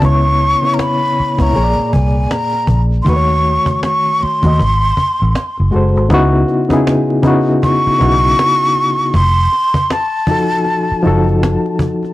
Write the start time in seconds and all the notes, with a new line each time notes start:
0.00 C#2 C#3 B3 E4, cajon bass
0.05 C#5 C#6
0.27 cajon slap
0.41 cajon slap
0.62 C#3 B3 E4, cajon slap
0.67 C#5
0.74 A#5
0.79 B5, cajon slap
1.02 cajon slap
1.16 muted fingered electric bass stroke, cajon slap
1.38 C#2 C#3 B3 E4 A#5, cajon bass
1.42 C#5
1.53 A#2 A#3 G#4, cajon slap
1.57 A#1 C#5
1.63 D5
1.79 muted fingered electric bass stroke, cajon slap
1.93 C2 G#5, cajon bass
2.15 cajon slap
2.31 A#5, cajon slap
2.53 cajon slap
2.67 A#1, cajon bass
2.91 cajon slap
3.02 D#3 A3 C6, cajon bass
3.07 D#2 F#4 B4 C#6
3.16 C#5
3.30 cajon slap
3.44 cajon slap
3.66 cajon bass
3.83 C#6, cajon slap
4.06 cajon slap
4.20 C6, muted fingered electric bass stroke, cajon slap
4.42 D#2 D#3 A3 F#4, cajon bass
4.46 D#5
4.59 G#1, cajon bass
4.83 cajon slap
4.97 muted fingered electric bass stroke, cajon bass
5.19 A1, cajon slap
5.35 cajon slap
5.57 F#1, cajon slap
5.71 G#3 F#4 A4, cajon slap
5.75 F#1 C5
5.95 G#1, cajon slap
5.97 cajon slap
6.09 C#2 C#3 B3 D#4 E4, cajon bass
6.14 F#4
6.48 cajon slap
6.69 C#3 B3 D#4 E4, cajon bass
6.73 G#4
6.87 cajon slap
7.22 C#3 B3 D#4 E4, cajon bass
7.27 F#4
7.49 cajon slap
7.63 C#6, cajon bass
7.87 muted fingered electric bass stroke
7.98 C#3 B3 D#4 E4, cajon bass
8.02 B1 F#4
8.23 cajon slap
8.39 cajon slap
8.61 cajon slap
8.75 cajon slap
8.99 cajon slap
9.01 cajon slap
9.14 F1 C6, cajon bass
9.52 cajon slap
9.74 cajon bass
9.90 A5, cajon slap
10.27 F3 D#4 F#4, cajon bass
10.31 A4
10.53 cajon slap
10.65 cajon slap
10.91 muted fingered electric bass stroke
11.02 F#1 F3 D#4 F#4, cajon slap
11.07 A4
11.28 cajon slap
11.43 cajon slap
11.65 cajon slap
11.79 cajon bass
12.03 cajon slap
12.05 cajon slap